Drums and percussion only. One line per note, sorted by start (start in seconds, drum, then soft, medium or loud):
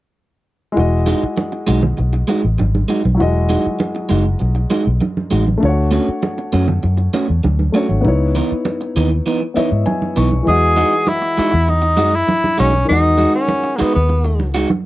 0.77 muted conga soft
1.37 high conga medium
1.83 low conga medium
1.99 muted conga soft
2.29 muted conga soft
2.60 high conga medium
2.75 high conga medium
3.05 high conga medium
3.20 muted conga soft
3.80 high conga medium
4.41 muted conga soft
4.71 muted conga soft
5.02 high conga medium
5.17 high conga medium
5.48 high conga medium
5.63 muted conga soft
6.23 high conga medium
6.68 low conga medium
6.84 muted conga soft
7.14 muted conga soft
7.44 high conga medium
7.59 high conga medium
7.89 high conga soft
8.05 muted conga soft
8.65 high conga medium
9.27 muted conga soft
9.57 muted conga soft
9.87 high conga medium
10.02 high conga medium
10.32 high conga medium
10.47 muted conga soft
11.07 high conga medium
11.68 muted conga soft
11.97 muted conga soft
12.29 high conga medium
12.44 high conga medium
12.74 high conga soft
12.89 muted conga soft
13.48 high conga medium
14.40 muted conga soft
14.70 high conga medium